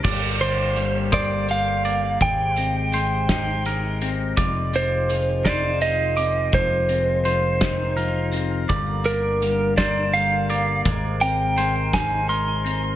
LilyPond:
<<
  \new Staff \with { instrumentName = "Electric slide guitar" } { \time 6/8 \key g \phrygian \tempo 4. = 56 r8 c''4 d''8 f''4 | g''2~ g''8 r8 | r8 c''4 d''8 ees''4 | c''2~ c''8 r8 |
r8 bes'4 d''8 f''4 | r8 g''4 aes''8 c'''4 | }
  \new Staff \with { instrumentName = "Clean electric guitar" } { \time 6/8 \key g \phrygian d''4 r8 c''4 d''8~ | d''8 r8 c''4 bes'4 | d''4 r8 c''4 d'''8~ | d'''8 r8 c''4 bes'4 |
d''4 r8 c''4 d''8~ | d''8 r8 c''4 bes'4 | }
  \new Staff \with { instrumentName = "Clean electric guitar" } { \clef bass \time 6/8 \key g \phrygian g,8 d8 g8 d'8 g8 bes8 | aes8 c'8 aes8 ees'8 aes8 c'8 | f8 c'8 f8 ees'8 f8 c'8 | f8 c'8 f8 ees'8 f8 c'8 |
g,8 d8 g8 d'8 g8 bes8 | aes8 c'8 aes8 ees'8 aes8 c'8 | }
  \new Staff \with { instrumentName = "Harmonium" } { \time 6/8 \key g \phrygian g'2.~ | g'2. | f'2.~ | f'2. |
bes'2.~ | bes'2. | }
  \new Staff \with { instrumentName = "Harmonium" } { \clef bass \time 6/8 \key g \phrygian << { bes2. | aes2.~ | aes2.~ | aes2. |
bes2. | aes2. | } \\ { d2. | c2. | ees2.~ | ees2. |
d2. | c2. | } >> }
  \new Staff \with { instrumentName = "Picked electric bass" } { \clef bass \time 6/8 \key g \phrygian g,,2. | aes,,2. | f,,2. | f,,2. |
g,,2. | aes,,2. | }
  \new DrumStaff \with { instrumentName = "Drums" } \drummode { \time 6/8 <cymc bd>8 hh8 hh8 <hh bd ss>8 hh8 hh8 | <hh bd>8 hh8 hh8 <hh bd sn>8 hh8 hh8 | <hh bd>8 hh8 hh8 <hh bd sn>8 hh8 hh8 | <hh bd>8 hh8 hh8 <hh bd sn>8 hh8 hh8 |
<hh bd>8 hh8 hh8 <hh bd sn>8 hh8 hh8 | <hh bd>8 hh8 hh8 <hh bd sn>8 hh8 hh8 | }
>>